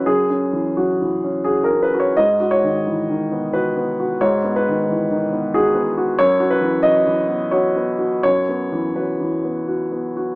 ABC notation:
X:1
M:3/4
L:1/16
Q:1/4=87
K:F#mix
V:1 name="Upright piano"
G4 F4 G A B c | d2 c6 B4 | c2 B6 G4 | c2 B2 d4 c4 |
c4 B6 z2 |]
V:2 name="Upright piano"
(3[F,,F]2 C2 E,2 (3F,2 E,2 C2 (3F2 C2 F2 | (3G,,2 F2 D,2 (3E,2 D,2 B,2 (3F2 B,2 F2 | (3G,,2 B,2 D,2 (3E,2 D,2 B,2 (3F2 B,2 F2 | (3F,,2 F2 E,2 (3F,2 E,2 B,2 (3F2 B,2 F2 |
(3F,,2 B,2 E,2 (3F,2 E,2 B,2 (3F2 B,2 F2 |]